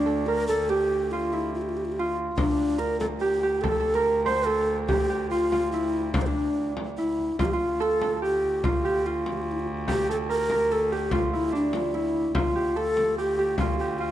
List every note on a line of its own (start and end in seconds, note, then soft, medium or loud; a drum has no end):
0.00 2.38 D2 medium
0.00 0.28 D4 medium
0.00 2.37 D4 medium
0.00 1.19 E4 medium
0.06 0.34 A4 medium
0.27 0.47 A#4 loud
0.27 0.55 A#4 medium
0.48 0.71 A4 loud
0.48 2.69 A4 medium
0.70 1.13 G4 loud
0.70 3.05 G4 medium
1.11 1.35 F4 loud
1.11 1.39 F4 medium
1.33 2.05 E4 medium
1.33 1.54 E4 medium
1.55 1.63 F4 medium
1.62 1.71 G4 medium
1.69 1.78 F4 medium
1.77 1.86 G4 medium
1.85 1.93 F4 medium
1.92 2.01 G4 medium
1.99 4.51 F4 medium
1.99 2.17 F4 medium
2.37 7.39 D2 medium
2.37 2.81 D4 medium
2.37 5.17 D4 medium
2.37 frame drum medium
2.59 frame drum soft
2.78 3.69 A#4 medium
2.78 2.99 A#4 medium
2.78 frame drum soft
3.00 3.06 A4 medium
3.00 frame drum medium
3.21 3.63 G4 medium
3.21 3.43 G4 medium
3.43 4.88 G4 medium
3.61 3.96 A4 loud
3.61 3.71 A4 medium
3.61 frame drum medium
3.72 3.79 A4 medium
3.80 4.01 A4 medium
3.84 frame drum soft
3.94 4.25 A#4 loud
3.94 4.52 A#4 medium
4.05 frame drum soft
4.26 6.24 C5 medium
4.26 4.48 C5 loud
4.26 frame drum medium
4.46 4.78 A4 loud
4.46 6.66 A4 medium
4.88 5.27 G4 loud
4.88 5.09 G4 medium
4.88 frame drum medium
5.10 7.45 G4 medium
5.10 frame drum soft
5.30 5.69 F4 medium
5.30 5.52 F4 medium
5.30 frame drum soft
5.52 5.79 F4 medium
5.52 frame drum medium
5.72 6.11 E4 medium
5.72 6.98 E4 medium
6.14 6.23 D4 medium
6.14 6.27 D4 medium
6.14 frame drum medium
6.22 6.28 C5 medium
6.27 6.72 D4 medium
6.27 9.07 D4 medium
6.77 frame drum medium
6.98 7.36 E4 medium
6.98 7.45 E4 medium
6.98 frame drum soft
7.19 frame drum soft
7.39 12.34 D2 medium
7.39 7.53 F4 medium
7.39 7.47 F4 medium
7.39 frame drum medium
7.45 7.55 G4 medium
7.53 8.64 F4 medium
7.53 7.84 F4 medium
7.61 frame drum soft
7.80 8.02 A4 medium
7.80 8.23 A4 loud
8.02 8.16 A4 medium
8.02 frame drum medium
8.16 10.09 A4 medium
8.22 8.84 G4 medium
8.22 8.67 G4 medium
8.43 frame drum soft
8.64 9.05 F4 medium
8.64 8.88 F4 medium
8.64 frame drum medium
8.85 9.87 G4 medium
8.85 9.08 G4 medium
9.06 11.12 F4 medium
9.06 9.34 F4 medium
9.26 frame drum medium
9.33 9.43 G4 medium
9.42 9.53 F4 medium
9.51 9.61 E4 medium
9.60 9.67 F4 medium
9.67 frame drum soft
9.87 10.92 G4 medium
9.87 10.08 G4 loud
9.87 frame drum medium
10.09 10.35 A4 medium
10.09 10.17 A4 medium
10.09 frame drum soft
10.29 10.51 A#4 medium
10.29 10.73 A#4 loud
10.50 10.77 A#4 medium
10.50 frame drum medium
10.71 12.76 A4 medium
10.71 10.94 A4 medium
10.91 12.55 G4 medium
10.91 11.14 G4 medium
10.91 frame drum soft
11.11 11.39 F4 medium
11.11 11.32 F4 medium
11.11 frame drum medium
11.32 11.94 E4 medium
11.32 11.52 E4 medium
11.32 frame drum soft
11.52 14.11 D4 medium
11.52 11.77 D4 medium
11.52 frame drum soft
11.73 11.96 F4 medium
11.73 frame drum medium
11.94 12.41 E4 medium
11.94 12.35 E4 medium
12.14 frame drum soft
12.35 14.11 D2 medium
12.35 13.59 F4 medium
12.35 12.78 F4 medium
12.35 frame drum medium
12.56 13.18 G4 medium
12.56 frame drum soft
12.76 14.11 A4 medium
12.76 13.17 A4 loud
12.97 frame drum medium
13.18 13.38 G4 medium
13.18 13.56 G4 medium
13.38 13.80 G4 medium
13.38 frame drum soft
13.58 13.77 F4 medium
13.58 14.00 F4 medium
13.58 frame drum medium
13.79 14.00 G4 medium
13.79 14.11 G4 medium
13.79 frame drum soft
13.99 14.11 F4 medium